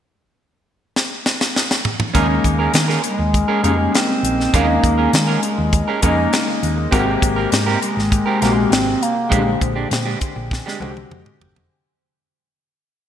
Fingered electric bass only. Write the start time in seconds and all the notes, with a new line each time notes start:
2.14 D#2
2.44 D#2
2.74 D#3
3.19 D#2
3.64 F2
4.23 A#1
4.54 D#2
4.84 D#2
5.13 D#3
5.58 D#2
6.03 F2
6.63 D#2
6.92 G#1
7.22 G#1
7.52 G#2
7.97 G#1
8.42 A#1
8.71 G#1
9.32 A#1
9.61 A#1
9.91 A#2
10.36 A#1
10.80 C2
11.10 F2
11.40 G1
11.56 F1